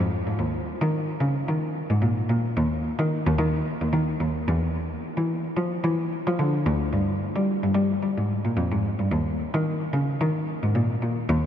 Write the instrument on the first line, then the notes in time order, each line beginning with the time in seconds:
cello
0.27 G#2
0.39 D#2
0.81 D#3
1.21 C#3
1.48 D#3
1.90 G#2
2.02 A#2
2.29 A#2
2.57 D#2
2.99 D#3
3.26 D#2
3.38 D#3
3.81 D#2
3.93 D#3
4.20 D#2
4.48 E2
5.18 E3
5.57 F3
5.84 E3
6.27 F3
6.39 D3
6.66 D2
6.93 G2
7.36 G3
7.63 G2
7.75 G3
8.02 G3
8.17 G#2
8.45 A#2
8.57 F2
8.72 G#2
8.99 G2
9.11 D#2
9.54 D#3
9.94 C#3
10.21 D#3
10.63 G#2
10.75 A#2
11.02 A#2
11.29 D#2